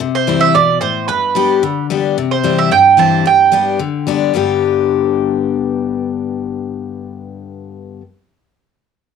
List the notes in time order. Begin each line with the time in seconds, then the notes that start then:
0.00 C3
0.15 C5
0.27 E3 G3 C4 E4
0.41 E5
0.55 B2 D5
0.81 A2 C5
1.08 G2 B4
1.35 G3 B3 D4 G4
1.63 D3
1.90 G3 B3 D4 G4
2.18 C3
2.31 C5
2.43 E3 G3 C4 E4
2.58 E5
2.71 G2 G5
2.97 E3 G3 C4 E4 A5
3.26 G2 G5
3.52 G3 B3 D4 G4
3.79 D3
4.07 G3 B3 D4 G4
4.34 G2 D3 G3 B3 D4 G4